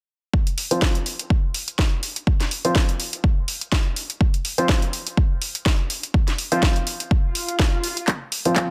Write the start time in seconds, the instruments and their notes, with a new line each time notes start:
0.34 kick
0.47 closed hi-hat
0.58 open hi-hat
0.71 grand piano F3 C4 F4 C5, closed hi-hat
0.82 kick, snare
0.95 closed hi-hat
1.06 open hi-hat
1.19 closed hi-hat
1.30 kick
1.54 open hi-hat
1.68 closed hi-hat
1.79 kick, snare
2.03 open hi-hat
2.16 closed hi-hat
2.27 kick
2.40 snare, closed hi-hat
2.51 open hi-hat
2.65 grand piano F3 C4 F4 C5, closed hi-hat
2.75 kick, snare
2.89 closed hi-hat
3.00 open hi-hat
3.13 closed hi-hat
3.24 kick
3.48 open hi-hat
3.61 closed hi-hat
3.72 kick, snare
3.96 open hi-hat
4.10 closed hi-hat
4.21 kick
4.34 closed hi-hat
4.45 open hi-hat
4.58 grand piano F3 C4 F4 C5, closed hi-hat
4.69 kick, snare
4.82 closed hi-hat
4.93 open hi-hat
5.07 closed hi-hat
5.17 kick
5.42 open hi-hat
5.55 closed hi-hat
5.66 kick, snare
5.90 open hi-hat
6.03 closed hi-hat
6.14 kick
6.28 snare, closed hi-hat
6.38 open hi-hat
6.52 grand piano F3 C4 F4 C5, closed hi-hat
6.63 kick, snare
6.76 closed hi-hat
6.87 open hi-hat
7.00 closed hi-hat
7.11 kick, swell
7.35 open hi-hat
7.49 closed hi-hat
7.59 kick, snare
7.84 open hi-hat
7.97 closed hi-hat
8.08 kick, clap, closed hi-hat, riser
8.32 open hi-hat
8.45 grand piano F3 C4 F4 C5, closed hi-hat
8.56 kick, clap, closed hi-hat